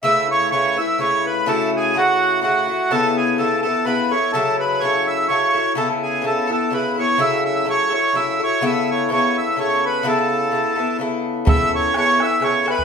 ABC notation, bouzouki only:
X:1
M:3/4
L:1/8
Q:"Swing" 1/4=126
K:A
V:1 name="Bouzouki"
[C,A,EB]2 [C,A,EB] [A,EB] [C,A,EB]2 | [C,A,EF]2 [C,A,EF]2 [C,A,EF] [A,EF] | [C,B,EA]2 [C,B,EA] [B,EA] [C,B,EA] [B,EA] | [C,F,EA]2 [C,F,EA]2 [C,F,EA] [F,EA] |
[C,B,EA]2 [C,B,EA] [B,EA] [C,B,EA] [B,EA] | [C,F,EA]2 [C,F,EA] [F,EA] [C,F,EA] [F,EA] | [C,B,EA]2 [C,B,EA]2 [C,B,EA]2 | [C,B,EA]2 [C,B,EA] [B,EA] [C,B,EA]2 |
[C,B,EA]2 [C,B,EA] [B,EA] [C,B,EA] [B,EA] |]